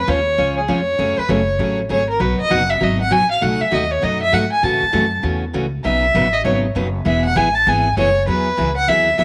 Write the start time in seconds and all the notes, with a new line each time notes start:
Already playing: B4
0.07 D#2 F3 G#3 C#4 F4 C#5
0.38 C#2 F3 G#3 C#4 F4 C#5
0.58 G#4
0.68 F2 F3 G#3 C#4 F4 C#5
0.98 F#2 C#3 F#3 A3 C#4 G#4
1.18 B4, muted upright bass stroke
1.29 F#1 C#3 F#3 A3 C#4 G#4 C#5
1.59 A1 C#3 F#3 A3 C#4 G#4
1.89 G#1 C#3 F#3 A3 C#4 G#4 C#5
2.09 A#4
2.19 B1 B2 F#3 B3 D#4 F#4 B4
2.40 D#5, muted upright bass stroke
2.50 F#1 B2 F#3 B3 D#4 F#4 F#5
2.70 E5
2.80 G#1 B2 F#3 B3 D#4 F#4 D#5
3.01 F#5
3.10 A1 B2 F#3 B3 D#4 F#4 G#5
3.31 F5
3.41 B1 B2 F#3 A3 D#4 F#4 F#5
3.61 E5, muted upright bass stroke
3.71 D#2 B2 F#3 A3 D#4 F#4 D#5
3.92 C#5
4.02 F#2 B2 F#3 A3 D#4 F#4 D#5
4.22 E5
4.32 G#2 B2 F#3 A3 D#4 F#4 F#5
4.52 G#5
4.63 A2 C#3 E3 A3 C#4 F#4 A5
4.82 muted upright bass stroke
4.93 F#2 C#3 E3 A3 C#4 F#4
5.23 E2 C#3 E3 A3 C#4 F#4
5.53 C#2 C#3 E3 A3 C#4 F#4
5.84 B1 B2 C#3 F#3 B3 D#4 B4 E5
6.15 A1 B2 C#3 F#3 B3 D#4 B4
6.34 D#5
6.44 G#1 B2 C#3 F#3 B3 D#4 B4 C#5
6.75 F#1 B2 C#3 F#3 B3 D#4 B4
7.05 E1 E3 G#3 B3 E4 G#4 E5
7.25 F#5
7.36 A1 E3 G#3 B3 E4 G#4 G#5
7.55 A5
7.67 G#1 E3 G#3 B3 E4 G#4 G#5
7.97 F#1 E3 G#3 B3 E4 G#4 C#5
8.27 E2 E3 F#3 B3 E4 G#4 B4
8.57 C#2 E3 F#3 B3 E4 G#4
8.76 F#5
8.88 D#2 E3 F#3 B3 E4 G#4 E5
9.18 E2 E3 F#3 B3 E4 G#4 E5